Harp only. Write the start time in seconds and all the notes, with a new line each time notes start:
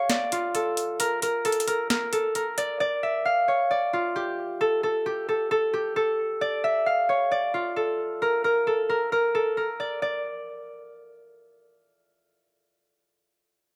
Already playing: G4 A4 C#5 F5
0.10 D5
0.32 F4
0.55 A4
1.00 A#4
1.22 A#4
1.45 A4
1.67 A#4
1.90 A#4
2.12 A4
2.35 A#4
2.58 D5
2.80 D5
3.03 E5
3.25 F5
3.48 C#5
3.71 D5
3.93 F4
4.16 G4
4.61 A4
4.83 A4
5.06 G4
5.29 A4
5.51 A4
5.73 G4
5.96 A4
6.41 D5
6.64 E5
6.86 F5
7.09 C#5
7.31 D5
7.54 F4
7.76 A4
8.22 A#4
8.44 A#4
8.67 A4
8.89 A#4
9.12 A#4
9.35 A4
9.57 A#4
9.80 D5
10.02 D5